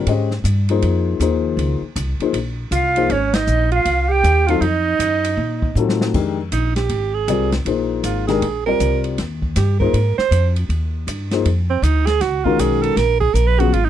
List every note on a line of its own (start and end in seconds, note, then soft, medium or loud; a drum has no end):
0.06 0.43 G#2 medium
0.06 0.29 G#3 medium
0.06 0.29 C#4 medium
0.06 0.29 G4 medium
0.06 0.29 C5 medium
0.06 0.29 D#5 medium
0.06 ride medium
0.31 snare soft
0.44 0.81 G2 medium
0.44 hi-hat pedal medium
0.44 ride medium
0.69 1.18 F3 medium
0.69 1.18 A#3 medium
0.69 1.18 D#4 medium
0.69 1.19 G#4 medium
0.69 1.19 C5 medium
0.69 ride soft
0.82 1.19 F2 medium
0.82 ride medium
1.20 1.56 D#2 medium
1.20 1.78 F3 medium
1.20 1.78 A#3 medium
1.20 1.78 D#4 medium
1.20 1.78 G#4 medium
1.20 1.79 C5 medium
1.20 hi-hat pedal medium
1.20 ride medium
1.57 1.80 C#2 medium
1.57 ride medium
1.82 muted upright bass stroke soft
1.96 2.18 C2 medium
1.96 hi-hat pedal medium
1.96 ride medium
2.20 2.33 F3 medium
2.20 2.33 A#3 medium
2.20 2.34 D#4 medium
2.20 2.33 G#4 medium
2.20 2.34 C5 medium
2.20 muted upright bass stroke soft
2.20 ride soft
2.33 2.71 A#1 medium
2.33 ride medium
2.71 3.08 C2 medium
2.71 3.12 F4 medium
2.71 3.13 F5 medium
2.71 hi-hat pedal soft
2.71 ride medium
2.96 3.09 F3 medium
2.96 3.09 A#3 medium
2.96 3.09 D#4 medium
2.96 3.09 G#4 medium
2.96 3.09 C5 medium
2.96 ride soft
3.09 3.46 G#1 medium
3.09 3.35 C#4 medium
3.09 3.37 C#5 medium
3.09 ride medium
3.34 3.71 D#4 medium
3.34 3.73 D#5 medium
3.34 snare medium
3.34 ride medium
3.47 3.85 A#1 medium
3.47 hi-hat pedal medium
3.72 4.01 F4 medium
3.72 4.04 F5 medium
3.72 ride soft
3.85 4.23 C2 medium
3.85 ride medium
4.01 4.10 F4 medium
4.01 4.13 F5 medium
4.09 4.49 G4 loud
4.09 4.52 G5 loud
4.24 4.60 D#2 medium
4.24 hi-hat pedal soft
4.24 ride medium
4.47 4.61 F#3 medium
4.47 4.61 C4 medium
4.47 4.61 D#4 medium
4.47 4.63 F4 medium
4.47 4.61 F4 medium
4.47 4.61 A4 medium
4.47 4.66 F5 medium
4.47 ride soft
4.61 4.98 F2 medium
4.61 5.76 D#4 medium
4.61 5.77 D#5 medium
4.61 ride medium
4.99 5.36 F#2 medium
4.99 hi-hat pedal soft
4.99 ride medium
5.24 ride medium
5.37 5.74 A#2 medium
5.62 kick medium
5.75 6.13 A2 medium
5.75 6.14 F#3 medium
5.75 6.15 C4 medium
5.75 6.15 D#4 medium
5.75 6.15 F4 medium
5.75 6.15 A4 medium
5.75 hi-hat pedal medium
5.89 snare medium
6.01 snare medium
6.14 6.51 F2 medium
6.14 6.36 D#3 medium
6.14 6.36 G#3 medium
6.14 6.36 D4 soft
6.14 6.36 G4 medium
6.14 6.36 A#4 medium
6.14 kick medium
6.14 crash medium
6.52 6.89 A#1 medium
6.52 6.75 D#4 medium
6.52 hi-hat pedal soft
6.52 ride medium
6.76 7.16 G4 medium
6.76 snare soft
6.76 ride soft
6.89 7.27 G#1 medium
6.89 ride medium
7.14 7.52 G#4 medium
7.28 7.65 C2 medium
7.28 7.50 G3 medium
7.28 7.50 C4 medium
7.28 7.50 F4 medium
7.28 7.50 A#4 medium
7.28 7.50 D5 medium
7.28 hi-hat pedal soft
7.28 ride medium
7.52 snare medium
7.52 ride soft
7.65 8.02 A#1 medium
7.65 8.23 F3 medium
7.65 8.24 A#3 medium
7.65 8.24 D#4 soft
7.65 8.24 G#4 medium
7.65 8.24 C5 medium
7.65 ride medium
8.03 8.40 G#1 medium
8.03 8.27 F4 soft
8.03 hi-hat pedal medium
8.03 ride medium
8.27 8.40 D#3 medium
8.27 8.41 G#3 medium
8.27 8.41 D4 medium
8.27 8.41 G4 medium
8.27 8.63 G#4 medium
8.27 8.41 A#4 medium
8.27 snare soft
8.27 ride soft
8.42 8.79 A#1 medium
8.42 ride medium
8.66 9.15 G3 medium
8.66 9.16 C4 soft
8.66 9.16 F4 soft
8.66 9.01 A#4 medium
8.66 9.16 A#4 medium
8.66 9.16 D5 medium
8.80 9.17 C2 medium
8.80 hi-hat pedal medium
8.80 ride medium
9.04 ride soft
9.18 9.55 D#2 medium
9.18 snare soft
9.18 ride medium
9.42 kick soft
9.56 9.93 G2 medium
9.56 9.79 G4 medium
9.56 snare soft
9.56 hi-hat pedal medium
9.56 ride medium
9.80 9.93 F3 medium
9.80 9.92 A#3 medium
9.80 9.93 D#4 medium
9.80 9.93 G#4 medium
9.80 10.15 A#4 medium
9.80 9.93 C5 medium
9.80 kick medium
9.93 10.16 G#2 medium
9.93 ride medium
10.18 10.53 C5 medium
10.18 muted upright bass stroke soft
10.18 snare soft
10.31 10.68 F2 medium
10.31 hi-hat pedal soft
10.31 ride medium
10.56 ride soft
10.69 11.06 D#2 medium
10.69 ride medium
11.07 11.44 G2 medium
11.07 hi-hat pedal soft
11.07 ride medium
11.31 11.44 F3 medium
11.31 11.44 A#3 medium
11.31 11.45 D#4 medium
11.31 11.45 G#4 medium
11.31 11.45 C5 medium
11.31 snare soft
11.31 ride soft
11.45 11.82 F2 medium
11.45 ride medium
11.70 11.85 C4 medium
11.82 12.20 D2 medium
11.82 12.08 D#4 medium
11.82 hi-hat pedal medium
11.82 ride medium
12.06 12.23 G#4 medium
12.06 snare soft
12.06 ride soft
12.20 12.58 C#2 medium
12.20 12.46 F#4 medium
12.20 snare soft
12.20 ride medium
12.44 12.94 D#3 medium
12.44 12.94 G#3 medium
12.44 12.95 C#4 medium
12.44 12.61 F4 medium
12.44 12.95 F#4 medium
12.44 12.95 A#4 medium
12.44 kick medium
12.58 12.96 B1 medium
12.58 12.84 G#4 medium
12.58 hi-hat pedal medium
12.58 ride medium
12.82 12.99 A4 medium
12.82 ride soft
12.96 13.33 A#1 medium
12.96 13.20 A#4 loud
12.96 snare soft
12.96 ride medium
13.20 13.36 G#4 medium
13.20 kick medium
13.34 13.71 A#1 medium
13.34 13.49 A#4 medium
13.34 hi-hat pedal medium
13.34 ride medium
13.47 13.61 B4 medium
13.59 13.72 C#3 medium
13.59 13.72 F#3 medium
13.59 13.72 B3 medium
13.59 13.72 F4 medium
13.59 13.74 F#4 medium
13.59 13.72 G#4 medium
13.59 ride soft
13.73 13.89 G#1 medium
13.73 13.87 F4 medium
13.73 ride medium
13.85 13.89 D#4 medium